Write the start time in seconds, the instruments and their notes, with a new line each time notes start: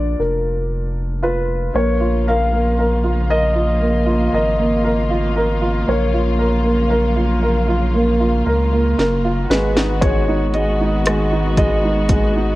Already playing: sub bass A#1, upright piano A#2 A#3 D4 F4, grand piano D5
0.19 sub bass F1, grand piano A#4
1.23 upright piano F4, grand piano B4
1.74 sub bass A#1, string section C#3 F3 A#3 F4, upright piano A#3, grand piano C#5
2.00 upright piano F4
2.27 upright piano A#4, grand piano F5
2.52 upright piano A#3
2.78 upright piano A#4
3.04 upright piano F4
3.30 upright piano A#4, grand piano D#5
3.55 upright piano F4
3.80 upright piano A#3
4.06 upright piano F4
4.33 sub bass G#1, upright piano A#4, grand piano D#5
4.58 upright piano A#3
4.84 upright piano A#4
5.10 upright piano F4
5.36 upright piano A#4
5.61 upright piano F4
5.87 sub bass A#1, string section F#3, upright piano A#3, grand piano C#5
6.14 upright piano F4
6.39 upright piano A#4
6.64 upright piano A#3
6.90 upright piano A#4
7.16 upright piano F4
7.42 upright piano A#4
7.68 upright piano F4
7.94 upright piano A#3
8.20 upright piano F4
8.46 sub bass C#2, upright piano A#4
8.72 upright piano A#3
8.98 sub bass F#1, upright piano A#4, snare
9.24 upright piano F4
9.50 sub bass G#1, string section D#3 G#3 B3 F#4, upright piano G#3, grand piano B4, snare
9.76 upright piano D#4, snare
10.01 upright piano G#3, grand piano C#5, kick, closed hi-hat
10.28 upright piano D#4
10.54 upright piano G#3, grand piano D#5, closed hi-hat
10.80 upright piano D#4
11.06 upright piano G#3, cross-stick, closed hi-hat
11.32 upright piano D#4
11.57 upright piano G#3, grand piano D#5, kick, closed hi-hat
11.84 upright piano D#4
12.09 upright piano G#3, kick, closed hi-hat
12.36 upright piano D#4